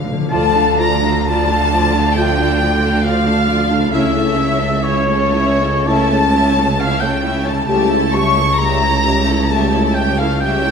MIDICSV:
0, 0, Header, 1, 12, 480
1, 0, Start_track
1, 0, Tempo, 963082
1, 149, Time_signature, 4, 2, 24, 8
1, 626, Tempo, 891530
1, 2546, Tempo, 1045296
1, 3026, Tempo, 931677
1, 3506, Tempo, 903614
1, 5584, End_track
2, 0, Start_track
2, 0, Title_t, "Flute section"
2, 0, Program_c, 0, 73
2, 155, Note_on_c, 0, 81, 94
2, 374, Note_off_c, 0, 81, 0
2, 393, Note_on_c, 0, 82, 100
2, 629, Note_off_c, 0, 82, 0
2, 631, Note_on_c, 0, 81, 82
2, 1112, Note_on_c, 0, 79, 83
2, 1113, Note_off_c, 0, 81, 0
2, 1585, Note_off_c, 0, 79, 0
2, 1589, Note_on_c, 0, 77, 78
2, 2061, Note_off_c, 0, 77, 0
2, 2064, Note_on_c, 0, 76, 84
2, 2548, Note_off_c, 0, 76, 0
2, 2550, Note_on_c, 0, 73, 83
2, 2902, Note_off_c, 0, 73, 0
2, 3025, Note_on_c, 0, 81, 88
2, 3496, Note_off_c, 0, 81, 0
2, 3506, Note_on_c, 0, 77, 77
2, 3622, Note_on_c, 0, 79, 69
2, 3623, Note_off_c, 0, 77, 0
2, 3851, Note_off_c, 0, 79, 0
2, 3859, Note_on_c, 0, 81, 81
2, 3968, Note_off_c, 0, 81, 0
2, 3974, Note_on_c, 0, 81, 88
2, 4209, Note_off_c, 0, 81, 0
2, 4216, Note_on_c, 0, 85, 93
2, 4457, Note_off_c, 0, 85, 0
2, 4458, Note_on_c, 0, 82, 97
2, 4939, Note_on_c, 0, 81, 76
2, 4942, Note_off_c, 0, 82, 0
2, 5183, Note_off_c, 0, 81, 0
2, 5184, Note_on_c, 0, 79, 83
2, 5305, Note_off_c, 0, 79, 0
2, 5305, Note_on_c, 0, 77, 75
2, 5426, Note_off_c, 0, 77, 0
2, 5428, Note_on_c, 0, 79, 78
2, 5584, Note_off_c, 0, 79, 0
2, 5584, End_track
3, 0, Start_track
3, 0, Title_t, "Oboe"
3, 0, Program_c, 1, 68
3, 150, Note_on_c, 1, 81, 112
3, 388, Note_on_c, 1, 82, 97
3, 396, Note_off_c, 1, 81, 0
3, 630, Note_on_c, 1, 81, 106
3, 638, Note_off_c, 1, 82, 0
3, 1122, Note_on_c, 1, 79, 103
3, 1130, Note_off_c, 1, 81, 0
3, 1591, Note_on_c, 1, 77, 101
3, 1599, Note_off_c, 1, 79, 0
3, 2062, Note_off_c, 1, 77, 0
3, 2069, Note_on_c, 1, 76, 108
3, 2549, Note_on_c, 1, 73, 104
3, 2555, Note_off_c, 1, 76, 0
3, 3031, Note_on_c, 1, 81, 111
3, 3039, Note_off_c, 1, 73, 0
3, 3415, Note_off_c, 1, 81, 0
3, 3503, Note_on_c, 1, 77, 107
3, 3617, Note_on_c, 1, 79, 88
3, 3625, Note_off_c, 1, 77, 0
3, 3856, Note_on_c, 1, 81, 90
3, 3863, Note_off_c, 1, 79, 0
3, 3970, Note_off_c, 1, 81, 0
3, 3973, Note_on_c, 1, 81, 100
3, 4219, Note_on_c, 1, 85, 96
3, 4227, Note_off_c, 1, 81, 0
3, 4456, Note_on_c, 1, 82, 109
3, 4464, Note_off_c, 1, 85, 0
3, 4794, Note_off_c, 1, 82, 0
3, 4945, Note_on_c, 1, 81, 90
3, 5176, Note_on_c, 1, 79, 100
3, 5184, Note_off_c, 1, 81, 0
3, 5302, Note_off_c, 1, 79, 0
3, 5308, Note_on_c, 1, 77, 89
3, 5417, Note_off_c, 1, 77, 0
3, 5420, Note_on_c, 1, 79, 111
3, 5584, Note_off_c, 1, 79, 0
3, 5584, End_track
4, 0, Start_track
4, 0, Title_t, "Violin section"
4, 0, Program_c, 2, 48
4, 0, Note_on_c, 2, 77, 55
4, 149, Note_on_c, 2, 81, 81
4, 151, Note_off_c, 2, 77, 0
4, 371, Note_off_c, 2, 81, 0
4, 391, Note_on_c, 2, 82, 82
4, 628, Note_off_c, 2, 82, 0
4, 630, Note_on_c, 2, 81, 103
4, 1103, Note_off_c, 2, 81, 0
4, 1110, Note_on_c, 2, 79, 86
4, 1582, Note_on_c, 2, 77, 89
4, 1585, Note_off_c, 2, 79, 0
4, 2058, Note_off_c, 2, 77, 0
4, 2060, Note_on_c, 2, 76, 79
4, 2537, Note_off_c, 2, 76, 0
4, 2546, Note_on_c, 2, 73, 81
4, 3026, Note_off_c, 2, 73, 0
4, 3026, Note_on_c, 2, 81, 91
4, 3506, Note_off_c, 2, 81, 0
4, 3510, Note_on_c, 2, 77, 95
4, 3625, Note_off_c, 2, 77, 0
4, 3625, Note_on_c, 2, 79, 77
4, 3849, Note_on_c, 2, 81, 76
4, 3857, Note_off_c, 2, 79, 0
4, 3959, Note_off_c, 2, 81, 0
4, 3966, Note_on_c, 2, 81, 84
4, 4204, Note_on_c, 2, 85, 96
4, 4205, Note_off_c, 2, 81, 0
4, 4447, Note_on_c, 2, 82, 102
4, 4451, Note_off_c, 2, 85, 0
4, 4936, Note_off_c, 2, 82, 0
4, 4936, Note_on_c, 2, 81, 78
4, 5175, Note_on_c, 2, 79, 76
4, 5181, Note_off_c, 2, 81, 0
4, 5301, Note_off_c, 2, 79, 0
4, 5306, Note_on_c, 2, 77, 86
4, 5426, Note_off_c, 2, 77, 0
4, 5427, Note_on_c, 2, 79, 92
4, 5584, Note_off_c, 2, 79, 0
4, 5584, End_track
5, 0, Start_track
5, 0, Title_t, "Violin section"
5, 0, Program_c, 3, 48
5, 156, Note_on_c, 3, 74, 75
5, 159, Note_on_c, 3, 65, 66
5, 263, Note_off_c, 3, 74, 0
5, 265, Note_off_c, 3, 65, 0
5, 274, Note_on_c, 3, 77, 63
5, 275, Note_on_c, 3, 69, 58
5, 391, Note_off_c, 3, 69, 0
5, 391, Note_off_c, 3, 77, 0
5, 399, Note_on_c, 3, 65, 65
5, 400, Note_on_c, 3, 74, 67
5, 513, Note_off_c, 3, 65, 0
5, 513, Note_on_c, 3, 69, 58
5, 514, Note_off_c, 3, 74, 0
5, 518, Note_on_c, 3, 77, 59
5, 629, Note_off_c, 3, 69, 0
5, 631, Note_off_c, 3, 77, 0
5, 642, Note_on_c, 3, 65, 63
5, 647, Note_on_c, 3, 74, 67
5, 751, Note_off_c, 3, 65, 0
5, 754, Note_off_c, 3, 74, 0
5, 768, Note_on_c, 3, 69, 61
5, 771, Note_on_c, 3, 77, 65
5, 881, Note_off_c, 3, 69, 0
5, 883, Note_off_c, 3, 77, 0
5, 885, Note_on_c, 3, 65, 71
5, 888, Note_on_c, 3, 74, 75
5, 998, Note_off_c, 3, 65, 0
5, 1000, Note_off_c, 3, 74, 0
5, 1016, Note_on_c, 3, 69, 59
5, 1021, Note_on_c, 3, 77, 65
5, 1122, Note_off_c, 3, 69, 0
5, 1125, Note_off_c, 3, 77, 0
5, 1131, Note_on_c, 3, 65, 68
5, 1132, Note_on_c, 3, 74, 68
5, 1231, Note_off_c, 3, 65, 0
5, 1232, Note_off_c, 3, 74, 0
5, 1238, Note_on_c, 3, 69, 61
5, 1243, Note_on_c, 3, 77, 60
5, 1352, Note_off_c, 3, 69, 0
5, 1354, Note_off_c, 3, 77, 0
5, 1357, Note_on_c, 3, 74, 59
5, 1358, Note_on_c, 3, 65, 64
5, 1471, Note_off_c, 3, 74, 0
5, 1472, Note_off_c, 3, 65, 0
5, 1480, Note_on_c, 3, 69, 64
5, 1483, Note_on_c, 3, 77, 67
5, 1588, Note_on_c, 3, 65, 64
5, 1592, Note_off_c, 3, 69, 0
5, 1592, Note_on_c, 3, 74, 68
5, 1593, Note_off_c, 3, 77, 0
5, 1697, Note_off_c, 3, 65, 0
5, 1699, Note_off_c, 3, 74, 0
5, 1711, Note_on_c, 3, 69, 58
5, 1712, Note_on_c, 3, 77, 61
5, 1823, Note_on_c, 3, 74, 66
5, 1826, Note_off_c, 3, 69, 0
5, 1826, Note_off_c, 3, 77, 0
5, 1826, Note_on_c, 3, 65, 66
5, 1939, Note_on_c, 3, 77, 58
5, 1940, Note_on_c, 3, 69, 57
5, 1941, Note_off_c, 3, 74, 0
5, 1942, Note_off_c, 3, 65, 0
5, 2058, Note_off_c, 3, 77, 0
5, 2059, Note_off_c, 3, 69, 0
5, 2060, Note_on_c, 3, 76, 64
5, 2062, Note_on_c, 3, 73, 68
5, 2170, Note_off_c, 3, 76, 0
5, 2171, Note_off_c, 3, 73, 0
5, 2191, Note_on_c, 3, 73, 58
5, 2192, Note_on_c, 3, 69, 58
5, 2304, Note_off_c, 3, 73, 0
5, 2305, Note_off_c, 3, 69, 0
5, 2310, Note_on_c, 3, 73, 65
5, 2312, Note_on_c, 3, 76, 57
5, 2422, Note_off_c, 3, 73, 0
5, 2424, Note_on_c, 3, 69, 56
5, 2427, Note_off_c, 3, 76, 0
5, 2428, Note_on_c, 3, 73, 58
5, 2544, Note_off_c, 3, 73, 0
5, 2548, Note_off_c, 3, 69, 0
5, 2550, Note_on_c, 3, 73, 69
5, 2553, Note_on_c, 3, 76, 68
5, 2654, Note_off_c, 3, 73, 0
5, 2656, Note_off_c, 3, 76, 0
5, 2673, Note_on_c, 3, 73, 65
5, 2676, Note_on_c, 3, 69, 62
5, 2789, Note_off_c, 3, 73, 0
5, 2791, Note_off_c, 3, 69, 0
5, 2795, Note_on_c, 3, 73, 74
5, 2796, Note_on_c, 3, 76, 67
5, 2914, Note_off_c, 3, 73, 0
5, 2914, Note_off_c, 3, 76, 0
5, 2920, Note_on_c, 3, 69, 62
5, 2920, Note_on_c, 3, 73, 64
5, 3034, Note_off_c, 3, 69, 0
5, 3034, Note_off_c, 3, 73, 0
5, 3045, Note_on_c, 3, 73, 70
5, 3047, Note_on_c, 3, 76, 69
5, 3155, Note_off_c, 3, 73, 0
5, 3156, Note_off_c, 3, 76, 0
5, 3160, Note_on_c, 3, 69, 58
5, 3162, Note_on_c, 3, 73, 60
5, 3273, Note_off_c, 3, 73, 0
5, 3278, Note_off_c, 3, 69, 0
5, 3279, Note_on_c, 3, 73, 54
5, 3283, Note_on_c, 3, 76, 61
5, 3387, Note_off_c, 3, 73, 0
5, 3394, Note_on_c, 3, 73, 62
5, 3396, Note_off_c, 3, 76, 0
5, 3398, Note_on_c, 3, 69, 62
5, 3507, Note_off_c, 3, 73, 0
5, 3510, Note_off_c, 3, 69, 0
5, 3515, Note_on_c, 3, 76, 69
5, 3517, Note_on_c, 3, 73, 61
5, 3620, Note_off_c, 3, 76, 0
5, 3621, Note_off_c, 3, 73, 0
5, 3627, Note_on_c, 3, 73, 61
5, 3631, Note_on_c, 3, 69, 55
5, 3731, Note_off_c, 3, 73, 0
5, 3738, Note_on_c, 3, 73, 62
5, 3738, Note_on_c, 3, 76, 71
5, 3743, Note_off_c, 3, 69, 0
5, 3853, Note_off_c, 3, 73, 0
5, 3855, Note_off_c, 3, 76, 0
5, 3860, Note_on_c, 3, 73, 55
5, 3866, Note_on_c, 3, 69, 55
5, 3972, Note_off_c, 3, 73, 0
5, 3979, Note_off_c, 3, 69, 0
5, 3979, Note_on_c, 3, 73, 64
5, 3981, Note_on_c, 3, 76, 61
5, 4087, Note_off_c, 3, 73, 0
5, 4089, Note_off_c, 3, 76, 0
5, 4104, Note_on_c, 3, 73, 57
5, 4108, Note_on_c, 3, 69, 60
5, 4219, Note_off_c, 3, 73, 0
5, 4221, Note_off_c, 3, 69, 0
5, 4226, Note_on_c, 3, 73, 68
5, 4227, Note_on_c, 3, 76, 69
5, 4341, Note_off_c, 3, 73, 0
5, 4341, Note_off_c, 3, 76, 0
5, 4353, Note_on_c, 3, 69, 57
5, 4354, Note_on_c, 3, 73, 58
5, 4462, Note_off_c, 3, 73, 0
5, 4465, Note_off_c, 3, 69, 0
5, 4468, Note_on_c, 3, 73, 68
5, 4471, Note_on_c, 3, 76, 69
5, 4575, Note_off_c, 3, 73, 0
5, 4577, Note_off_c, 3, 76, 0
5, 4594, Note_on_c, 3, 73, 62
5, 4598, Note_on_c, 3, 69, 62
5, 4702, Note_off_c, 3, 73, 0
5, 4707, Note_on_c, 3, 76, 62
5, 4708, Note_off_c, 3, 69, 0
5, 4709, Note_on_c, 3, 73, 68
5, 4823, Note_off_c, 3, 73, 0
5, 4824, Note_off_c, 3, 76, 0
5, 4830, Note_on_c, 3, 73, 57
5, 4831, Note_on_c, 3, 69, 58
5, 4944, Note_off_c, 3, 73, 0
5, 4947, Note_off_c, 3, 69, 0
5, 4948, Note_on_c, 3, 76, 68
5, 4951, Note_on_c, 3, 73, 65
5, 5058, Note_off_c, 3, 76, 0
5, 5059, Note_off_c, 3, 73, 0
5, 5066, Note_on_c, 3, 73, 57
5, 5070, Note_on_c, 3, 69, 62
5, 5186, Note_off_c, 3, 73, 0
5, 5188, Note_off_c, 3, 69, 0
5, 5194, Note_on_c, 3, 73, 61
5, 5196, Note_on_c, 3, 76, 55
5, 5305, Note_off_c, 3, 73, 0
5, 5311, Note_off_c, 3, 76, 0
5, 5311, Note_on_c, 3, 69, 65
5, 5311, Note_on_c, 3, 73, 62
5, 5429, Note_off_c, 3, 69, 0
5, 5429, Note_off_c, 3, 73, 0
5, 5430, Note_on_c, 3, 76, 59
5, 5436, Note_on_c, 3, 73, 62
5, 5540, Note_off_c, 3, 76, 0
5, 5543, Note_off_c, 3, 73, 0
5, 5550, Note_on_c, 3, 69, 59
5, 5555, Note_on_c, 3, 73, 58
5, 5584, Note_off_c, 3, 69, 0
5, 5584, Note_off_c, 3, 73, 0
5, 5584, End_track
6, 0, Start_track
6, 0, Title_t, "Viola section"
6, 0, Program_c, 4, 48
6, 153, Note_on_c, 4, 65, 72
6, 155, Note_on_c, 4, 53, 64
6, 262, Note_off_c, 4, 65, 0
6, 263, Note_off_c, 4, 53, 0
6, 276, Note_on_c, 4, 62, 63
6, 277, Note_on_c, 4, 57, 62
6, 392, Note_off_c, 4, 57, 0
6, 392, Note_off_c, 4, 62, 0
6, 393, Note_on_c, 4, 65, 65
6, 394, Note_on_c, 4, 53, 63
6, 510, Note_off_c, 4, 65, 0
6, 511, Note_off_c, 4, 53, 0
6, 516, Note_on_c, 4, 57, 63
6, 516, Note_on_c, 4, 62, 61
6, 631, Note_off_c, 4, 57, 0
6, 631, Note_off_c, 4, 62, 0
6, 638, Note_on_c, 4, 65, 72
6, 639, Note_on_c, 4, 53, 73
6, 749, Note_off_c, 4, 53, 0
6, 749, Note_off_c, 4, 65, 0
6, 762, Note_on_c, 4, 57, 65
6, 763, Note_on_c, 4, 62, 67
6, 878, Note_off_c, 4, 57, 0
6, 879, Note_off_c, 4, 62, 0
6, 886, Note_on_c, 4, 53, 69
6, 888, Note_on_c, 4, 65, 67
6, 999, Note_off_c, 4, 53, 0
6, 1000, Note_off_c, 4, 65, 0
6, 1003, Note_on_c, 4, 57, 64
6, 1003, Note_on_c, 4, 62, 58
6, 1116, Note_off_c, 4, 57, 0
6, 1116, Note_off_c, 4, 62, 0
6, 1122, Note_on_c, 4, 65, 67
6, 1123, Note_on_c, 4, 53, 66
6, 1227, Note_off_c, 4, 53, 0
6, 1227, Note_off_c, 4, 65, 0
6, 1242, Note_on_c, 4, 57, 63
6, 1242, Note_on_c, 4, 62, 62
6, 1354, Note_off_c, 4, 57, 0
6, 1354, Note_off_c, 4, 62, 0
6, 1361, Note_on_c, 4, 65, 66
6, 1362, Note_on_c, 4, 53, 62
6, 1473, Note_off_c, 4, 65, 0
6, 1474, Note_off_c, 4, 53, 0
6, 1478, Note_on_c, 4, 57, 60
6, 1481, Note_on_c, 4, 62, 60
6, 1591, Note_off_c, 4, 57, 0
6, 1591, Note_on_c, 4, 65, 68
6, 1592, Note_off_c, 4, 62, 0
6, 1592, Note_on_c, 4, 53, 68
6, 1698, Note_off_c, 4, 65, 0
6, 1699, Note_off_c, 4, 53, 0
6, 1708, Note_on_c, 4, 62, 60
6, 1710, Note_on_c, 4, 57, 60
6, 1824, Note_off_c, 4, 62, 0
6, 1825, Note_off_c, 4, 57, 0
6, 1825, Note_on_c, 4, 53, 57
6, 1825, Note_on_c, 4, 65, 63
6, 1942, Note_off_c, 4, 53, 0
6, 1942, Note_off_c, 4, 65, 0
6, 1944, Note_on_c, 4, 57, 58
6, 1946, Note_on_c, 4, 62, 61
6, 2060, Note_on_c, 4, 61, 67
6, 2061, Note_off_c, 4, 57, 0
6, 2062, Note_off_c, 4, 62, 0
6, 2062, Note_on_c, 4, 64, 69
6, 2170, Note_off_c, 4, 61, 0
6, 2171, Note_off_c, 4, 64, 0
6, 2176, Note_on_c, 4, 57, 59
6, 2178, Note_on_c, 4, 61, 66
6, 2292, Note_off_c, 4, 61, 0
6, 2297, Note_off_c, 4, 57, 0
6, 2299, Note_on_c, 4, 61, 62
6, 2299, Note_on_c, 4, 64, 59
6, 2418, Note_off_c, 4, 61, 0
6, 2421, Note_off_c, 4, 64, 0
6, 2422, Note_on_c, 4, 57, 65
6, 2424, Note_on_c, 4, 61, 61
6, 2537, Note_off_c, 4, 61, 0
6, 2543, Note_on_c, 4, 61, 66
6, 2543, Note_on_c, 4, 64, 63
6, 2547, Note_off_c, 4, 57, 0
6, 2650, Note_off_c, 4, 64, 0
6, 2651, Note_off_c, 4, 61, 0
6, 2661, Note_on_c, 4, 61, 65
6, 2662, Note_on_c, 4, 57, 63
6, 2779, Note_off_c, 4, 61, 0
6, 2784, Note_off_c, 4, 57, 0
6, 2784, Note_on_c, 4, 64, 71
6, 2785, Note_on_c, 4, 61, 70
6, 2907, Note_off_c, 4, 61, 0
6, 2908, Note_off_c, 4, 64, 0
6, 2912, Note_on_c, 4, 61, 60
6, 2915, Note_on_c, 4, 57, 61
6, 3025, Note_off_c, 4, 61, 0
6, 3030, Note_on_c, 4, 64, 62
6, 3031, Note_off_c, 4, 57, 0
6, 3031, Note_on_c, 4, 61, 68
6, 3147, Note_off_c, 4, 61, 0
6, 3147, Note_off_c, 4, 64, 0
6, 3155, Note_on_c, 4, 57, 62
6, 3155, Note_on_c, 4, 61, 59
6, 3271, Note_off_c, 4, 61, 0
6, 3275, Note_off_c, 4, 57, 0
6, 3277, Note_on_c, 4, 64, 64
6, 3278, Note_on_c, 4, 61, 67
6, 3385, Note_off_c, 4, 61, 0
6, 3392, Note_on_c, 4, 61, 59
6, 3393, Note_off_c, 4, 64, 0
6, 3394, Note_on_c, 4, 57, 69
6, 3504, Note_off_c, 4, 61, 0
6, 3508, Note_off_c, 4, 57, 0
6, 3510, Note_on_c, 4, 61, 68
6, 3511, Note_on_c, 4, 64, 67
6, 3617, Note_off_c, 4, 61, 0
6, 3618, Note_off_c, 4, 64, 0
6, 3626, Note_on_c, 4, 57, 60
6, 3627, Note_on_c, 4, 61, 58
6, 3734, Note_off_c, 4, 61, 0
6, 3738, Note_on_c, 4, 64, 54
6, 3740, Note_on_c, 4, 61, 61
6, 3741, Note_off_c, 4, 57, 0
6, 3849, Note_off_c, 4, 61, 0
6, 3855, Note_off_c, 4, 64, 0
6, 3856, Note_on_c, 4, 57, 60
6, 3856, Note_on_c, 4, 61, 60
6, 3974, Note_off_c, 4, 57, 0
6, 3974, Note_off_c, 4, 61, 0
6, 3980, Note_on_c, 4, 67, 70
6, 3981, Note_on_c, 4, 55, 63
6, 4088, Note_off_c, 4, 67, 0
6, 4089, Note_off_c, 4, 55, 0
6, 4096, Note_on_c, 4, 57, 62
6, 4097, Note_on_c, 4, 64, 62
6, 4215, Note_off_c, 4, 57, 0
6, 4215, Note_on_c, 4, 55, 59
6, 4216, Note_off_c, 4, 64, 0
6, 4217, Note_on_c, 4, 67, 58
6, 4336, Note_off_c, 4, 55, 0
6, 4336, Note_off_c, 4, 67, 0
6, 4339, Note_on_c, 4, 57, 60
6, 4340, Note_on_c, 4, 64, 64
6, 4458, Note_off_c, 4, 57, 0
6, 4458, Note_off_c, 4, 64, 0
6, 4466, Note_on_c, 4, 55, 69
6, 4467, Note_on_c, 4, 67, 61
6, 4574, Note_off_c, 4, 55, 0
6, 4574, Note_off_c, 4, 67, 0
6, 4585, Note_on_c, 4, 57, 59
6, 4586, Note_on_c, 4, 64, 58
6, 4702, Note_off_c, 4, 57, 0
6, 4702, Note_off_c, 4, 64, 0
6, 4709, Note_on_c, 4, 55, 63
6, 4710, Note_on_c, 4, 67, 64
6, 4825, Note_off_c, 4, 55, 0
6, 4826, Note_off_c, 4, 67, 0
6, 4830, Note_on_c, 4, 57, 58
6, 4831, Note_on_c, 4, 64, 61
6, 4946, Note_off_c, 4, 57, 0
6, 4947, Note_off_c, 4, 64, 0
6, 4950, Note_on_c, 4, 55, 62
6, 4951, Note_on_c, 4, 67, 65
6, 5059, Note_off_c, 4, 55, 0
6, 5059, Note_off_c, 4, 67, 0
6, 5069, Note_on_c, 4, 64, 66
6, 5071, Note_on_c, 4, 57, 63
6, 5187, Note_off_c, 4, 64, 0
6, 5188, Note_off_c, 4, 57, 0
6, 5193, Note_on_c, 4, 55, 63
6, 5193, Note_on_c, 4, 67, 68
6, 5310, Note_off_c, 4, 55, 0
6, 5310, Note_off_c, 4, 67, 0
6, 5312, Note_on_c, 4, 57, 62
6, 5314, Note_on_c, 4, 64, 62
6, 5430, Note_off_c, 4, 57, 0
6, 5431, Note_off_c, 4, 64, 0
6, 5431, Note_on_c, 4, 55, 63
6, 5431, Note_on_c, 4, 67, 62
6, 5540, Note_off_c, 4, 55, 0
6, 5541, Note_off_c, 4, 67, 0
6, 5550, Note_on_c, 4, 64, 58
6, 5553, Note_on_c, 4, 57, 61
6, 5584, Note_off_c, 4, 57, 0
6, 5584, Note_off_c, 4, 64, 0
6, 5584, End_track
7, 0, Start_track
7, 0, Title_t, "French horn section"
7, 0, Program_c, 5, 60
7, 151, Note_on_c, 5, 57, 75
7, 153, Note_on_c, 5, 65, 73
7, 332, Note_off_c, 5, 57, 0
7, 333, Note_off_c, 5, 65, 0
7, 1112, Note_on_c, 5, 65, 78
7, 1113, Note_on_c, 5, 57, 80
7, 1289, Note_off_c, 5, 57, 0
7, 1289, Note_off_c, 5, 65, 0
7, 2066, Note_on_c, 5, 64, 71
7, 2069, Note_on_c, 5, 57, 76
7, 2242, Note_off_c, 5, 64, 0
7, 2243, Note_off_c, 5, 57, 0
7, 3025, Note_on_c, 5, 57, 84
7, 3028, Note_on_c, 5, 64, 76
7, 3215, Note_off_c, 5, 57, 0
7, 3217, Note_off_c, 5, 64, 0
7, 3970, Note_on_c, 5, 67, 74
7, 3971, Note_on_c, 5, 57, 77
7, 4152, Note_off_c, 5, 67, 0
7, 4153, Note_off_c, 5, 57, 0
7, 4943, Note_on_c, 5, 57, 82
7, 4945, Note_on_c, 5, 67, 74
7, 5125, Note_off_c, 5, 57, 0
7, 5127, Note_off_c, 5, 67, 0
7, 5584, End_track
8, 0, Start_track
8, 0, Title_t, "Harp"
8, 0, Program_c, 6, 46
8, 62, Note_on_c, 6, 50, 71
8, 85, Note_on_c, 6, 53, 59
8, 107, Note_on_c, 6, 62, 65
8, 129, Note_on_c, 6, 69, 63
8, 1967, Note_on_c, 6, 49, 68
8, 1991, Note_on_c, 6, 57, 61
8, 2015, Note_on_c, 6, 64, 57
8, 2031, Note_off_c, 6, 50, 0
8, 2034, Note_off_c, 6, 69, 0
8, 2040, Note_on_c, 6, 69, 64
8, 2043, Note_off_c, 6, 53, 0
8, 2055, Note_off_c, 6, 62, 0
8, 3871, Note_off_c, 6, 49, 0
8, 3878, Note_on_c, 6, 49, 67
8, 3896, Note_off_c, 6, 57, 0
8, 3903, Note_on_c, 6, 57, 58
8, 3921, Note_off_c, 6, 64, 0
8, 3927, Note_on_c, 6, 64, 56
8, 3951, Note_on_c, 6, 67, 62
8, 4029, Note_off_c, 6, 69, 0
8, 5584, Note_off_c, 6, 49, 0
8, 5584, Note_off_c, 6, 57, 0
8, 5584, Note_off_c, 6, 64, 0
8, 5584, Note_off_c, 6, 67, 0
8, 5584, End_track
9, 0, Start_track
9, 0, Title_t, "Timpani"
9, 0, Program_c, 7, 47
9, 21, Note_on_c, 7, 50, 77
9, 54, Note_off_c, 7, 50, 0
9, 60, Note_on_c, 7, 50, 72
9, 98, Note_off_c, 7, 50, 0
9, 104, Note_on_c, 7, 50, 78
9, 139, Note_off_c, 7, 50, 0
9, 153, Note_on_c, 7, 50, 90
9, 854, Note_off_c, 7, 50, 0
9, 5584, End_track
10, 0, Start_track
10, 0, Title_t, "Cello section"
10, 0, Program_c, 8, 48
10, 156, Note_on_c, 8, 50, 75
10, 2041, Note_off_c, 8, 50, 0
10, 2064, Note_on_c, 8, 49, 74
10, 3955, Note_off_c, 8, 49, 0
10, 3978, Note_on_c, 8, 49, 69
10, 5584, Note_off_c, 8, 49, 0
10, 5584, End_track
11, 0, Start_track
11, 0, Title_t, "Double bass section"
11, 0, Program_c, 10, 48
11, 156, Note_on_c, 10, 38, 84
11, 2041, Note_off_c, 10, 38, 0
11, 2062, Note_on_c, 10, 37, 78
11, 3954, Note_off_c, 10, 37, 0
11, 3976, Note_on_c, 10, 37, 77
11, 5584, Note_off_c, 10, 37, 0
11, 5584, End_track
12, 0, Start_track
12, 0, Title_t, "Tuba"
12, 0, Program_c, 11, 58
12, 153, Note_on_c, 11, 38, 83
12, 2039, Note_off_c, 11, 38, 0
12, 2064, Note_on_c, 11, 37, 85
12, 3881, Note_off_c, 11, 37, 0
12, 3971, Note_on_c, 11, 37, 78
12, 5584, Note_off_c, 11, 37, 0
12, 5584, End_track
0, 0, End_of_file